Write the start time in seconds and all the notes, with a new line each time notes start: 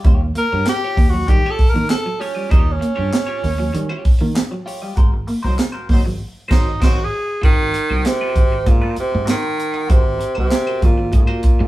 0.04 D#2 G3 F4 G4 C#5, kick, closed hi-hat
0.22 muted clean electric guitar stroke
0.35 A#3 A#4, muted clean electric guitar stroke, closed hi-hat
0.52 G2 F4 G4 C#5
0.66 G4, muted clean electric guitar stroke, snare, clap, closed hi-hat
0.84 F4 G4 C#5
0.97 D#2 A#3, muted clean electric guitar stroke, kick, open hi-hat
1.09 F#4
1.13 F#3, muted clean electric guitar stroke
1.27 D#3 G3 G4, muted clean electric guitar stroke, kick, closed hi-hat
1.43 C#5, muted clean electric guitar stroke
1.47 F4 G4 A4
1.59 muted fingered electric bass stroke, muted clean electric guitar stroke, kick, open hi-hat
1.70 A#3 A#4
1.76 D#3, muted clean electric guitar stroke
1.90 A4, muted clean electric guitar stroke, snare, clap, closed hi-hat
2.05 F#3, muted clean electric guitar stroke
2.20 C#4 F4 G4 C#5, muted clean electric guitar stroke, open hi-hat
2.35 G3 F4 G4 D#5
2.49 D#2 G3 D#4 F4 G4 C#5, kick, closed hi-hat
2.65 muted clean electric guitar stroke
2.72 C#4
2.79 A#3, muted clean electric guitar stroke, closed hi-hat
2.96 G2 F4 G4 C#5
3.10 muted clean electric guitar stroke, snare, clap, closed hi-hat
3.27 F4 G4 C#5
3.42 D#2 A#3, muted clean electric guitar stroke, open hi-hat
3.58 F#3, muted clean electric guitar stroke
3.73 D#3 G3, muted clean electric guitar stroke, closed hi-hat
3.89 F4 G4 C#5, muted clean electric guitar stroke
4.04 muted clean electric guitar stroke, muted fingered electric bass stroke, kick, open hi-hat
4.19 D#3 A#3, muted clean electric guitar stroke
4.35 muted clean electric guitar stroke, snare, clap, closed hi-hat
4.51 F#3, muted clean electric guitar stroke
4.66 F4 G4 C#5, muted clean electric guitar stroke, open hi-hat
4.82 G3 F4 G4 D#5
4.96 G#1 G#3 F#4 A#4 C5, kick, closed hi-hat
5.12 muted clean electric guitar stroke
5.27 A#3, muted clean electric guitar stroke, open hi-hat
5.43 C2 F#3 D#4 F#4 A#4 C5
5.57 muted clean electric guitar stroke, snare, clap, closed hi-hat
5.72 F#4 A#4 C5
5.89 G#1 F#3 A#3 D#4 C5, muted clean electric guitar stroke, kick, open hi-hat
6.04 F#3, muted clean electric guitar stroke
6.48 G#1 F#3 D#4 F#4 A#4 C5, kick, snare, crash
6.80 G#1 F#3 D#4 F#4 A#4 C5, kick, snare, crash
6.84 F#4
7.04 G#4
7.42 G#1 D#3 F#4 A#4 C5, kick, closed hi-hat
7.58 muted clean electric guitar stroke
7.73 muted clean electric guitar stroke, closed hi-hat
7.90 C2 F#4 A#4 C5
8.04 C3, muted clean electric guitar stroke, snare, clap, closed hi-hat
8.21 F#4 A#4 C5
8.35 G#1, muted clean electric guitar stroke, kick, closed hi-hat
8.52 muted clean electric guitar stroke
8.66 G#2 A#2, muted clean electric guitar stroke, kick, closed hi-hat
8.81 F#4 A#4 C5
8.95 C3, muted clean electric guitar stroke, muted fingered electric bass stroke, closed hi-hat
9.12 G#2, muted clean electric guitar stroke
9.26 D#3 F#4 A#4 C5, snare, clap, closed hi-hat
9.57 muted clean electric guitar stroke, closed hi-hat
9.74 F#4 A#4 D#5
9.87 G#1 C3 F#4 A#4 C5, kick, closed hi-hat
10.03 muted clean electric guitar stroke
10.18 muted clean electric guitar stroke, closed hi-hat
10.35 C2 C3 F#4 A#4 C5
10.50 muted clean electric guitar stroke, snare, clap, closed hi-hat
10.67 F#4 A#4 C5
10.82 G#1 A#2, muted clean electric guitar stroke, kick, closed hi-hat
10.98 muted clean electric guitar stroke
11.12 G#2 A#2, muted clean electric guitar stroke, kick, closed hi-hat
11.27 F#4 A#4 C5
11.43 muted clean electric guitar stroke, muted fingered electric bass stroke, kick, closed hi-hat
11.59 G#2, muted clean electric guitar stroke